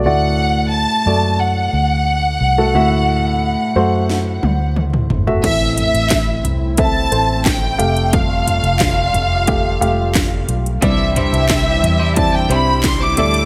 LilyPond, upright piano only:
<<
  \new Staff \with { instrumentName = "Upright piano" } { \time 4/4 \key d \mixolydian \tempo 4 = 89 <a fis' d''>4~ <a fis' d''>16 r16 <a fis' d''>4.~ <a fis' d''>16 r8 <a fis' a'>16 | <a fis' e''>4~ <a fis' e''>16 r16 <a fis' c''>4.~ <a fis' c''>16 r8 <a fis' e''>16 | <c' a' e''>4.~ <c' a' e''>16 r16 <c' a' e''>8 <c' a' c''>4 <a g' f''>8~ | <a g' f''>4~ <a g' f''>16 r8. <a g' f''>8 <a g' f''>4~ <a g' f''>16 r16 |
<c' e' d''>4.~ <c' e' d''>16 r16 <c' e' d''>8 <c' e' c''>4 <a e' d''>8 | }
  \new Staff \with { instrumentName = "Upright piano" } { \clef bass \time 4/4 \key d \mixolydian a,4. r2 r8 | a,4. r2 r8 | <a, e>4. r2 c8~ | c4 r2. |
g,4. r2 a,8 | }
>>